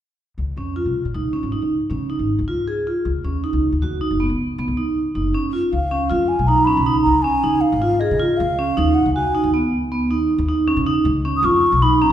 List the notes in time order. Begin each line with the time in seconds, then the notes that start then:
0.38 C#2
0.57 F2 C#4
0.76 F4
0.85 C#2
1.05 A#2
1.14 C#2 D#4
1.33 C#4
1.43 G#1
1.52 D#4
1.62 C#2
1.90 C#3 C#4
2.10 D#4
2.19 G#1
2.39 C#2
2.48 F4
2.68 G#4
2.87 F4
3.05 C#2
3.24 D#2 C#4
3.44 D#4
3.53 C#2
3.72 D#2
3.82 F#1 F#4
4.01 D#4
4.11 F#1
4.20 B3
4.29 C#2
4.58 C#3 B3
4.68 C#2
4.77 D#4
5.15 F#1 D#4
5.34 C#4
5.53 F4
5.72 C#2 F5
5.91 C#4
6.10 F2 F4
6.28 G#5
6.39 B1
6.47 D#4 A#5
6.65 C#4 B5
6.77 C#2
6.86 D#4
7.01 A#5
7.06 C#2
7.22 C#4 G#5
7.44 C#2 D#4
7.61 F5
7.72 G#1
7.82 F4
8.00 G#4 D#5
8.11 C#3
8.19 F4
8.37 C#2 F5
8.59 C#4
8.77 D#2 D#4
8.94 F#5
9.06 C#2
9.14 F#4 G#5
9.35 D#4
9.44 D#2
9.54 B3
9.72 C#2
9.92 B3
10.10 D#2 D#4
10.38 D#2
10.48 D#4
10.68 C#4
10.77 C#3
10.86 D#4
11.05 C#2
11.25 C#4
11.37 D#6
11.43 F2 F4 C#6
11.72 B1
11.82 D#4 B5
12.02 C#4 A#5